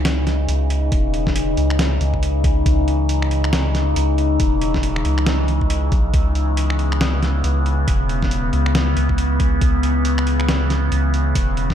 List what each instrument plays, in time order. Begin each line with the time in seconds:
Already playing: sub bass C#2, synth drone C#3 E3 D#4
0.05 snare, closed hi-hat
0.27 snare, closed hi-hat
0.48 sub bass C#2, closed hi-hat
0.70 closed hi-hat
0.92 sub bass E1, kick, closed hi-hat
1.14 closed hi-hat
1.27 kick, snare
1.36 closed hi-hat
1.57 sub bass C#2, closed hi-hat
1.70 finger snap
1.79 snare, closed hi-hat
2.00 sub bass C#2, closed hi-hat
2.14 kick
2.23 closed hi-hat
2.44 kick, closed hi-hat
2.66 sub bass C#2, kick, closed hi-hat
2.88 closed hi-hat
3.09 closed hi-hat
3.22 finger snap
3.31 closed hi-hat
3.44 finger snap
3.53 snare, closed hi-hat
3.75 snare, closed hi-hat
3.96 sub bass C#2, closed hi-hat
4.18 closed hi-hat
4.40 sub bass E1, kick, closed hi-hat
4.61 closed hi-hat
4.74 kick, snare
4.83 closed hi-hat
4.96 finger snap
5.05 sub bass C#2, closed hi-hat
5.18 finger snap
5.26 snare, closed hi-hat
5.48 closed hi-hat
5.61 kick
5.70 closed hi-hat
5.92 sub bass B1, kick, closed hi-hat
6.14 sub bass C#2, synth drone B3, kick, closed hi-hat
6.35 closed hi-hat
6.57 closed hi-hat
6.70 finger snap
6.79 closed hi-hat
6.92 finger snap
7.01 snare, closed hi-hat
7.23 snare, closed hi-hat
7.44 sub bass C#2, closed hi-hat
7.66 closed hi-hat
7.88 sub bass E1, kick, closed hi-hat
8.09 closed hi-hat
8.22 kick, snare
8.31 closed hi-hat
8.53 sub bass C#2, closed hi-hat
8.66 finger snap
8.75 snare, closed hi-hat
8.96 sub bass C#2, closed hi-hat
9.09 kick
9.18 closed hi-hat
9.40 kick, closed hi-hat
9.61 sub bass C#2, kick, closed hi-hat
9.83 closed hi-hat
10.05 closed hi-hat
10.18 finger snap
10.27 closed hi-hat
10.40 finger snap
10.49 snare, closed hi-hat
10.70 snare, closed hi-hat
10.92 sub bass C#2, closed hi-hat
11.14 closed hi-hat
11.35 sub bass E1, kick, closed hi-hat
11.57 closed hi-hat
11.70 kick, snare